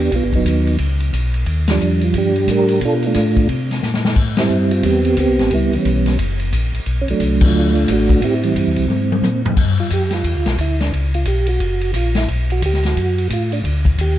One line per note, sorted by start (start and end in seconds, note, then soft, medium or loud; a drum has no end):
0.00 0.10 E2 medium
0.00 0.11 B3 medium
0.00 0.11 D4 medium
0.00 0.14 G4 loud
0.11 0.22 B1 medium
0.11 0.24 F4 medium
0.11 kick soft
0.11 ride medium
0.16 0.35 B3 medium
0.24 0.34 G#1 medium
0.33 0.45 F#1 medium
0.33 0.78 F#3 medium
0.33 0.77 B3 medium
0.33 0.77 D#4 medium
0.33 kick soft
0.33 ride soft
0.45 0.78 D#2 medium
0.45 kick soft
0.45 hi-hat pedal medium
0.45 ride medium
0.67 ride soft
0.78 1.11 C#2 medium
0.78 kick soft
0.78 ride medium
1.00 ride soft
1.13 1.45 B1 medium
1.13 kick soft
1.13 hi-hat pedal medium
1.13 ride medium
1.34 ride soft
1.46 1.79 D#2 medium
1.46 kick soft
1.46 ride medium
1.68 2.33 F3 medium
1.68 2.16 G3 medium
1.68 2.04 D4 medium
1.68 snare medium
1.68 ride medium
1.80 2.14 F2 medium
1.80 hi-hat pedal medium
2.01 2.16 F4 medium
2.01 ride soft
2.14 2.47 G2 medium
2.14 2.79 G3 medium
2.14 2.49 D4 medium
2.14 kick soft
2.14 ride medium
2.18 2.50 G4 medium
2.36 ride soft
2.47 2.80 A2 medium
2.47 2.81 D4 medium
2.47 2.81 G4 medium
2.47 kick soft
2.47 hi-hat pedal medium
2.47 ride medium
2.51 2.84 A#4 loud
2.68 ride soft
2.81 3.14 B2 medium
2.81 3.06 F4 medium
2.81 kick soft
2.81 ride medium
2.85 3.05 D4 medium
2.85 2.94 A4 loud
3.02 ride soft
3.06 3.48 A3 medium
3.06 3.48 D4 medium
3.06 3.48 F4 loud
3.14 3.48 A2 medium
3.14 kick soft
3.14 snare soft
3.14 hi-hat pedal medium
3.14 ride medium
3.37 kick medium
3.37 ride soft
3.48 3.81 C3 medium
3.48 kick soft
3.48 ride medium
3.71 snare soft
3.71 ride soft
3.82 4.16 A#2 medium
3.82 snare soft
3.82 hi-hat pedal medium
3.94 snare medium
4.05 snare medium
4.16 4.49 A2 medium
4.16 kick medium
4.16 crash medium
4.37 5.02 G3 medium
4.37 4.85 C4 medium
4.37 4.73 E4 medium
4.37 snare medium
4.37 ride medium
4.49 4.83 G2 medium
4.49 hi-hat pedal medium
4.71 4.84 F4 medium
4.71 ride soft
4.83 5.16 E2 medium
4.83 5.18 B3 medium
4.83 5.19 C4 medium
4.83 5.19 G4 loud
4.83 kick soft
4.83 ride medium
5.05 ride soft
5.17 5.28 D2 medium
5.17 5.50 B3 medium
5.17 5.50 C4 medium
5.17 5.53 G4 loud
5.17 kick soft
5.17 hi-hat pedal medium
5.17 ride medium
5.29 5.40 C2 medium
5.39 5.50 A1 medium
5.39 snare soft
5.39 ride medium
5.50 5.70 C#2 medium
5.50 5.74 G3 medium
5.50 6.16 B3 medium
5.50 5.75 E4 medium
5.50 kick soft
5.50 ride medium
5.71 5.78 C#2 soft
5.71 ride soft
5.76 6.17 E3 medium
5.76 6.17 G3 medium
5.76 6.18 C#4 medium
5.85 6.18 B1 medium
5.85 kick soft
5.85 hi-hat pedal soft
5.85 ride medium
6.06 snare soft
6.06 ride soft
6.19 6.51 F#1 medium
6.19 kick soft
6.19 ride medium
6.39 ride soft
6.52 6.72 A#1 medium
6.52 kick soft
6.52 hi-hat pedal medium
6.52 ride medium
6.74 6.80 A#1 soft
6.74 ride soft
6.86 7.06 B1 medium
6.86 kick soft
6.86 ride medium
7.02 7.09 C#4 medium
7.08 7.14 B1 soft
7.08 7.73 F#3 medium
7.08 7.44 A3 medium
7.08 7.44 D4 medium
7.08 ride soft
7.20 7.53 C2 medium
7.20 kick soft
7.20 hi-hat pedal medium
7.20 ride medium
7.41 kick medium
7.41 crash medium
7.45 7.90 A3 medium
7.45 7.90 D4 medium
7.45 7.92 F4 loud
7.52 7.86 D2 medium
7.75 ride medium
7.87 8.20 A1 medium
7.87 8.21 A3 medium
7.87 8.21 D4 medium
7.87 kick soft
7.87 hi-hat pedal medium
7.87 ride medium
7.93 8.25 F#4 loud
8.09 kick medium
8.09 ride medium
8.21 8.54 A2 medium
8.21 8.45 C4 medium
8.21 8.86 E4 medium
8.21 kick soft
8.21 ride medium
8.26 8.34 G4 loud
8.43 8.87 E3 medium
8.43 8.87 G3 medium
8.43 9.42 C4 medium
8.43 ride soft
8.55 8.66 G2 medium
8.55 kick soft
8.55 hi-hat pedal medium
8.55 ride medium
8.66 8.78 E2 medium
8.76 8.88 C2 medium
8.76 ride soft
8.88 9.22 G#2 medium
8.88 high tom soft
9.12 high tom medium
9.22 9.55 A#2 medium
9.22 hi-hat pedal medium
9.22 high tom medium
9.46 floor tom medium
9.57 9.90 G2 medium
9.57 kick medium
9.57 crash medium
9.78 9.91 F4 medium
9.78 ride soft
9.90 10.23 F#2 medium
9.90 10.13 G4 medium
9.90 kick soft
9.90 hi-hat pedal medium
9.90 ride medium
10.10 10.56 F4 medium
10.10 snare soft
10.10 ride soft
10.24 10.36 E2 medium
10.24 kick soft
10.24 ride medium
10.35 10.47 D2 medium
10.46 10.57 B1 medium
10.46 snare medium
10.46 ride soft
10.58 10.91 D2 medium
10.58 10.80 E4 medium
10.58 kick soft
10.58 hi-hat pedal soft
10.58 ride medium
10.80 10.92 D4 medium
10.80 snare soft
10.80 ride soft
10.93 11.25 C#2 medium
10.93 kick soft
10.93 ride medium
11.14 11.26 F4 medium
11.14 ride soft
11.25 11.59 B1 medium
11.25 11.48 G4 medium
11.25 kick soft
11.25 hi-hat pedal medium
11.25 ride medium
11.46 11.91 F#4 medium
11.46 ride soft
11.60 11.93 F#1 medium
11.60 kick soft
11.60 ride medium
11.81 ride soft
11.94 12.27 A#1 medium
11.94 12.16 F4 medium
11.94 kick soft
11.94 hi-hat pedal medium
11.94 ride medium
12.15 12.29 E4 medium
12.15 snare medium
12.15 ride soft
12.28 12.61 B1 medium
12.28 kick soft
12.28 ride medium
12.50 12.63 F#4 medium
12.50 ride soft
12.62 12.95 D2 medium
12.62 12.84 G4 medium
12.62 kick soft
12.62 hi-hat pedal soft
12.62 ride medium
12.73 snare soft
12.83 13.28 F#4 medium
12.83 snare soft
12.83 ride soft
12.96 13.29 F#2 medium
12.96 kick soft
12.96 ride medium
13.18 ride soft
13.30 13.62 A2 medium
13.30 13.52 F4 medium
13.30 kick soft
13.30 hi-hat pedal medium
13.30 ride medium
13.52 13.60 D4 medium
13.52 ride soft
13.64 13.96 D2 medium
13.64 kick soft
13.64 ride medium
13.85 kick medium
13.85 ride soft
13.98 14.19 D#2 medium
13.98 14.19 G4 medium
13.98 kick soft
13.98 hi-hat pedal medium
13.98 ride medium